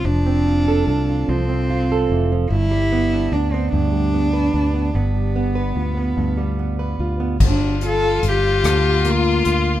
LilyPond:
<<
  \new Staff \with { instrumentName = "Violin" } { \time 6/8 \key g \mixolydian \tempo 4. = 49 r2. | r2. | r2. | f'2. | }
  \new Staff \with { instrumentName = "Cello" } { \time 6/8 \key g \mixolydian d'4. c'4 r8 | e'4 d'16 c'16 d'4. | b2~ b8 r8 | d'8 a'8 g'4 f'4 | }
  \new Staff \with { instrumentName = "Steel-string acoustic guitar" } { \time 6/8 \key g \mixolydian << { r8 f'16 a'16 a'16 f'8. f'16 a'8. | r8 b16 d'16 d'16 b8. b16 b'16 d'16 b16 | r8 b16 b'16 f'16 b8. b16 b'16 f'16 b16 | r8 f'8 f'4 bes8 bes8 | } \\ { f16 c'4~ c'16 f16 c'8. e16 f16 | g,16 g4~ g16 g,16 g4~ g16 | g,16 g4~ g16 g,16 g4~ g16 | g,4. d4. | } >> }
  \new Staff \with { instrumentName = "Fretless electric bass" } { \clef bass \time 6/8 \key g \mixolydian f,,4 c,8 c,4 f,,8 | g,,4 d,8 d,4 d,8 | g,,4 d,8 d,4 d,8 | g,,4 g,,8 d,4 d,8 | }
  \new DrumStaff \with { instrumentName = "Drums" } \drummode { \time 6/8 r4. r4. | r4. r4. | r4. r4. | <cymc bd>8 hh8 hh8 <hh ss>8 hh8 hh8 | }
>>